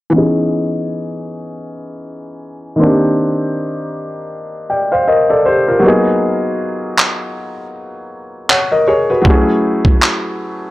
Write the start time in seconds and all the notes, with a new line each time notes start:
0.10 E3 B3 C#4
0.16 D#4 G#4
2.76 D#3 A#3 C4
2.82 D4 G4
4.70 D5 G5
4.92 C5 F5
5.08 A#4 D#5
5.30 A4 D5
5.46 G4 C5
5.68 F4 A#4
5.79 F#3 A#3
5.84 B3 D#4 G#4
6.98 clap
8.49 C#5 F#5, clap
8.72 A#4 D#5
8.88 G#4 C#5
9.10 F#4 B4
9.22 F#3 A3 C#4, kick
9.27 E4 G#4
9.85 kick
10.02 clap